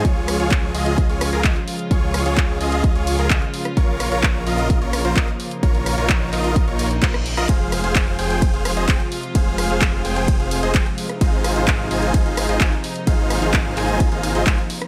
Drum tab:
RD |----------------|----------------|----------------|----------------|
HH |x-oxx-oxxxoxxxox|x-oxx-oxxxoxxxox|x-oxx-oxxxoxxxox|xxoxx-oxxxoxxxox|
CP |----x-------x---|----x-------x---|----x-------x---|----x-x-----x---|
SD |--r-------r-----|--r------------r|--r-------r-----|--r----------r-r|
BD |o---o---o---o---|o---o---o---o---|o---o---o---o---|o---o---o---o---|

RD |x---x---x---x---|x---x---x---x---|x---x---x---x---|x---x---x---x---|
HH |x-oxx-oxxxoxxxox|x-oxx-oxxxoxxxox|x-oxx-oxxxoxxxox|x-oxx-oxxxoxxxox|
CP |----x-------x---|----x-------x---|----x-------x---|----x-x-----x---|
SD |--r-------r-----|--r------------r|--r-------r-----|--r------------r|
BD |o---o---o---o---|o---o---o---o---|o---o---o---o---|o---o---o---o---|